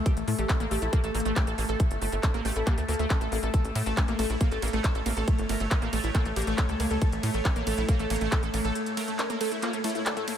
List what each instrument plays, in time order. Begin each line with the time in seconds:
Already playing: synth drone A3 A4
0.06 analog synth lead G4, kick, closed hi-hat
0.17 analog synth bass A1, analog synth lead A3, closed hi-hat
0.28 analog synth bass A2, synth arpeggio sound A3, analog synth lead A3, open hi-hat
0.38 analog synth bass A1, synth arpeggio sound A3, analog synth lead G4, closed hi-hat
0.49 analog synth lead A3, synth arpeggio sound C#4, kick, clap, closed hi-hat
0.60 analog synth bass A1, analog synth lead A3, synth arpeggio sound A#3, closed hi-hat
0.71 analog synth bass A1, synth arpeggio sound A3, analog synth lead G4, open hi-hat
0.82 analog synth bass A#1, analog synth lead A3, synth arpeggio sound E4, closed hi-hat
0.93 analog synth lead A3, synth arpeggio sound A#3, kick, closed hi-hat
1.04 analog synth bass A1, synth arpeggio sound A3, analog synth lead A4, closed hi-hat
1.15 analog synth bass A1, analog synth lead A3, synth arpeggio sound A#3, open hi-hat
1.20 closed hi-hat
1.25 analog synth bass A1, synth arpeggio sound A3, analog synth lead A3, closed hi-hat
1.36 synth arpeggio sound C#4, analog synth lead G4, kick, clap, closed hi-hat
1.47 analog synth bass A1, analog synth lead A3, synth arpeggio sound A4, closed hi-hat
1.58 analog synth bass A1, analog synth lead A3, synth arpeggio sound A#3, open hi-hat
1.69 analog synth bass A1, synth arpeggio sound A4, analog synth lead A4, closed hi-hat
1.80 analog synth lead A3, kick, closed hi-hat
1.91 analog synth bass G1, analog synth lead A3, closed hi-hat
2.02 analog synth bass G1, synth arpeggio sound A3, analog synth lead A4, open hi-hat
2.12 analog synth bass G1, synth arpeggio sound A3, analog synth lead A3, closed hi-hat
2.23 synth arpeggio sound C#4, analog synth lead A4, kick, clap, closed hi-hat
2.34 analog synth bass A1, analog synth lead A3, synth arpeggio sound A#3, closed hi-hat
2.45 analog synth bass A1, synth arpeggio sound A3, analog synth lead G4, open hi-hat
2.56 analog synth bass A1, analog synth lead A3, synth arpeggio sound E4, closed hi-hat
2.67 synth arpeggio sound A#3, analog synth lead G4, kick, clap, closed hi-hat
2.78 analog synth bass D2, synth arpeggio sound A3, analog synth lead A3, closed hi-hat
2.88 analog synth bass D2, synth arpeggio sound A#3, analog synth lead A4, open hi-hat
2.94 closed hi-hat
2.99 analog synth bass D2, synth arpeggio sound A3, analog synth lead A3, closed hi-hat
3.10 synth arpeggio sound C#4, analog synth lead A4, kick, clap, closed hi-hat
3.21 analog synth bass A1, analog synth lead A3, synth arpeggio sound A4, closed hi-hat
3.32 analog synth bass A1, analog synth lead A3, synth arpeggio sound A#3, open hi-hat
3.43 analog synth bass A1, analog synth lead A3, synth arpeggio sound A4, closed hi-hat
3.54 analog synth lead A4, synth drone C#5, kick, closed hi-hat
3.65 analog synth bass A1, analog synth lead A3, closed hi-hat
3.75 analog synth bass A2, synth arpeggio sound A3, analog synth lead A3, open hi-hat, ride
3.86 analog synth bass A1, synth arpeggio sound A3, analog synth lead A4, closed hi-hat
3.97 analog synth lead A3, synth arpeggio sound C#4, kick, clap, closed hi-hat
4.08 analog synth bass A1, analog synth lead A3, synth arpeggio sound A#3, closed hi-hat
4.19 analog synth bass A1, synth arpeggio sound A3, analog synth lead A4, open hi-hat, ride
4.30 analog synth bass A#1, analog synth lead A3, synth arpeggio sound E4, closed hi-hat
4.41 analog synth lead A3, synth arpeggio sound A#3, kick, closed hi-hat
4.52 analog synth bass A1, synth arpeggio sound A3, analog synth lead A4, closed hi-hat
4.62 analog synth bass A1, analog synth lead A3, synth arpeggio sound A#3, open hi-hat, ride
4.68 closed hi-hat
4.73 analog synth bass A1, synth arpeggio sound A3, analog synth lead A3, closed hi-hat
4.84 synth arpeggio sound C#4, analog synth lead A4, kick, clap, closed hi-hat
4.95 analog synth bass A1, analog synth lead A3, synth arpeggio sound A4, closed hi-hat
5.06 analog synth bass A1, analog synth lead A3, synth arpeggio sound A#3, open hi-hat, ride
5.17 analog synth bass A1, synth arpeggio sound A4, analog synth lead A4, closed hi-hat
5.28 analog synth lead A3, kick, closed hi-hat
5.39 analog synth bass G1, analog synth lead A3, closed hi-hat
5.49 analog synth bass G1, synth arpeggio sound A3, analog synth lead A#4, open hi-hat, ride
5.60 analog synth bass G1, synth arpeggio sound A3, analog synth lead A3, closed hi-hat
5.71 synth arpeggio sound C#4, analog synth lead A#4, kick, clap, closed hi-hat
5.82 analog synth bass A1, analog synth lead A3, synth arpeggio sound A#3, closed hi-hat
5.93 analog synth bass A1, synth arpeggio sound A3, analog synth lead A4, open hi-hat, ride
6.04 analog synth bass A1, analog synth lead A3, synth arpeggio sound E4, closed hi-hat
6.15 synth arpeggio sound A#3, analog synth lead A4, kick, clap, closed hi-hat
6.25 analog synth bass A1, synth arpeggio sound A3, analog synth lead A3, closed hi-hat
6.36 analog synth bass A1, synth arpeggio sound A#3, analog synth lead G4, open hi-hat, ride
6.42 closed hi-hat
6.47 analog synth bass A1, synth arpeggio sound A3, analog synth lead A3, closed hi-hat
6.58 synth arpeggio sound C#4, analog synth lead A4, kick, clap, closed hi-hat
6.69 analog synth bass C#2, analog synth lead A3, synth arpeggio sound A4, closed hi-hat
6.80 analog synth bass C#2, analog synth lead A3, synth arpeggio sound A#3, open hi-hat, ride
6.91 analog synth bass C#2, analog synth lead A3, synth arpeggio sound A4, closed hi-hat
7.02 analog synth lead A4, kick, closed hi-hat
7.12 analog synth bass A1, analog synth lead A3, closed hi-hat
7.23 analog synth bass A2, synth arpeggio sound A3, analog synth lead A3, open hi-hat, ride
7.34 analog synth bass A1, synth arpeggio sound A3, analog synth lead A4, closed hi-hat
7.45 analog synth lead A3, synth arpeggio sound C#4, kick, clap, closed hi-hat
7.56 analog synth bass A1, analog synth lead A3, synth arpeggio sound A#3, closed hi-hat
7.67 analog synth bass A1, synth arpeggio sound A3, analog synth lead A4, open hi-hat, ride
7.78 analog synth bass A#1, analog synth lead A3, synth arpeggio sound E4, closed hi-hat
7.89 analog synth lead A3, synth arpeggio sound A#3, kick, closed hi-hat
7.99 analog synth bass A1, synth arpeggio sound A3, analog synth lead A4, closed hi-hat
8.10 analog synth bass A1, analog synth lead A3, synth arpeggio sound A#3, open hi-hat, ride
8.16 closed hi-hat
8.21 analog synth bass A1, synth arpeggio sound A3, analog synth lead A3, closed hi-hat
8.32 synth arpeggio sound C#4, analog synth lead A4, kick, clap, closed hi-hat
8.43 analog synth bass A1, analog synth lead A3, synth arpeggio sound A4, closed hi-hat
8.54 analog synth bass A1, analog synth lead A3, synth arpeggio sound A#3, open hi-hat, ride
8.65 analog synth bass A1, synth arpeggio sound A4, analog synth lead A4, closed hi-hat
8.75 analog synth lead A3, closed hi-hat
8.86 analog synth lead A3, closed hi-hat
8.97 synth arpeggio sound A3, analog synth lead A#4, open hi-hat, ride
9.08 synth arpeggio sound A3, analog synth lead A3, closed hi-hat
9.19 synth arpeggio sound C#4, analog synth lead A#4, clap, closed hi-hat
9.30 analog synth lead A3, synth arpeggio sound A#3, closed hi-hat
9.41 synth arpeggio sound A3, analog synth lead A4, open hi-hat, ride
9.52 analog synth lead A3, synth arpeggio sound E4, closed hi-hat
9.62 synth arpeggio sound A#3, analog synth lead F4, clap, closed hi-hat
9.73 synth arpeggio sound A3, analog synth lead A3, closed hi-hat
9.84 synth arpeggio sound A3, analog synth lead E4, open hi-hat, ride
9.90 closed hi-hat
9.95 analog synth lead A3, synth arpeggio sound E4, closed hi-hat
10.06 analog synth lead D4, synth arpeggio sound A4, clap, closed hi-hat
10.17 synth arpeggio sound A3, analog synth lead A3, closed hi-hat
10.28 analog synth lead A3, synth arpeggio sound A#3, open hi-hat, ride